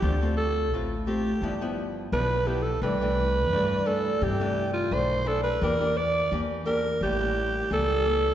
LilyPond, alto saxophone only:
\new Staff \with { instrumentName = "Alto saxophone" } { \time 4/4 \key c \major \tempo 4 = 86 g'8 a'8 r8 g'4 r8 b'8 g'16 a'16 | b'4. a'8 g'8. f'16 c''8 a'16 b'16 | bes'8 d''8 r8 bes'8 g'4 a'4 | }